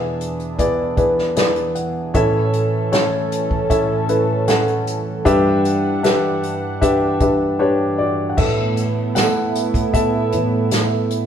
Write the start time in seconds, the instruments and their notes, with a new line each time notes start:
Already playing: grand piano E2 B2 B3 E4 G#4 D5 E5, analog synth pad E2 E3 D4 G#4
0.21 closed hi-hat
0.40 closed hi-hat
0.58 grand piano B3 E4 G#4 D5, kick, closed hi-hat
0.97 grand piano B3 E4 G#4 B4 D5, kick, closed hi-hat
1.18 snare
1.36 grand piano B3 E4 G#4 D5 E5, snare, closed hi-hat
1.56 closed hi-hat
1.75 grand piano F#5, closed hi-hat
2.14 grand piano A2 E3 C#4 E4 A4 E5, analog synth pad A2 C#4 A4, kick, closed hi-hat
2.53 closed hi-hat
2.92 grand piano C#4 E4 A4 C#5, snare, closed hi-hat
3.32 closed hi-hat
3.51 kick
3.70 grand piano C#4 E4 A4 E5, kick, closed hi-hat
4.09 grand piano C#4 E4 A4 B4, closed hi-hat
4.48 grand piano C#4 E4 A4 F#5, snare, closed hi-hat
4.68 closed hi-hat
4.87 closed hi-hat
5.25 grand piano G2 G3 D4 G4 B4 E5, analog synth pad G2 D4 F#5, kick, closed hi-hat
5.65 closed hi-hat
6.03 grand piano D4 G4 B4 E5, snare, closed hi-hat
6.43 closed hi-hat
6.81 grand piano D4 G4 B4 E5, kick, closed hi-hat
7.20 grand piano D4 G4 B4 E5, kick, closed hi-hat
7.59 grand piano D4 G4 B4 C#5
7.98 grand piano F#4 D5
8.29 grand piano F#5
8.37 grand piano A2 E3 B3 A4 E5, analog synth pad A2 A3 B3 E4, kick, crash
8.77 closed hi-hat
9.15 grand piano A4 F#5, snare, closed hi-hat, tambourine
9.55 closed hi-hat
9.74 kick, closed hi-hat
9.94 grand piano A4 E5, kick, closed hi-hat
10.32 grand piano A2 E3 B3, closed hi-hat
10.71 snare, closed hi-hat, tambourine
11.11 closed hi-hat